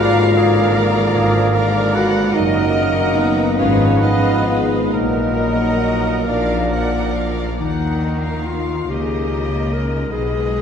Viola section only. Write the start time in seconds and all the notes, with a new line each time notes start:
Already playing: A#4 D5
0.35 A#4 D5
1.53 A#4 D5
2.75 A#4 D#5
3.57 B4 D#5
4.01 B4 D#5
5.38 A#4 D#5
6.28 A#4 D5
6.71 A#4 D5
7.59 A#3
8.89 A#3
10.12 G#3